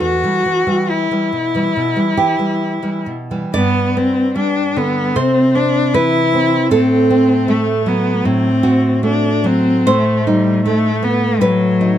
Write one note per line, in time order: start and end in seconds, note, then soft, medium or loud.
0.00 0.22 E2 soft
0.00 0.92 F#4 medium
0.24 0.43 E3 soft
0.24 0.43 G3 soft
0.46 0.66 E3 soft
0.67 1.07 E3 soft
0.67 1.07 G3 soft
0.90 3.08 E4 soft
1.11 1.30 E3 soft
1.11 1.31 G3 soft
1.32 1.67 B2 soft
1.55 1.74 E3 soft
1.55 1.74 G3 soft
1.76 1.96 B2 soft
1.96 2.15 E3 soft
1.96 2.15 G3 soft
2.17 2.38 E3 soft
2.17 3.49 G4 medium
2.39 2.79 E3 soft
2.39 2.79 G3 soft
2.82 3.04 E3 soft
2.82 3.04 G3 soft
3.06 3.44 B2 soft
3.31 3.51 E3 soft
3.31 3.51 G3 soft
3.54 5.11 G2 medium
3.54 3.99 B3 medium
3.54 5.11 D5 medium
3.97 4.60 B3 soft
3.97 4.36 C4 medium
4.36 4.99 G3 soft
4.36 4.79 D4 medium
4.76 5.15 D3 soft
4.76 5.18 B3 medium
5.16 6.69 C3 medium
5.16 5.57 C4 medium
5.16 5.92 C5 medium
5.55 6.18 C4 soft
5.55 5.96 D4 medium
5.94 6.57 E3 soft
5.94 6.72 E4 medium
5.94 6.69 B4 medium
6.34 6.72 C4 soft
6.71 8.22 A2 medium
6.71 7.51 C4 medium
6.71 8.60 A4 medium
7.10 7.72 C4 soft
7.48 8.10 A3 soft
7.48 7.90 A3 medium
7.86 8.49 F#3 soft
7.86 8.27 B3 medium
8.25 9.84 A2 soft
8.25 9.04 C4 medium
8.63 9.28 C4 soft
8.63 9.83 F#4 medium
9.03 9.71 A3 soft
9.03 9.48 D4 medium
9.44 9.87 F#3 soft
9.44 9.89 C4 medium
9.87 11.38 A2 medium
9.87 10.30 A3 medium
9.87 11.37 C5 medium
10.27 10.65 G3 medium
10.27 10.88 D#4 medium
10.65 11.06 A3 medium
10.65 11.27 A3 soft
11.03 11.64 B3 soft
11.03 11.43 B3 medium
11.41 11.98 A2 medium
11.41 11.98 F#3 medium
11.41 11.98 B4 medium
11.81 11.98 D#4 soft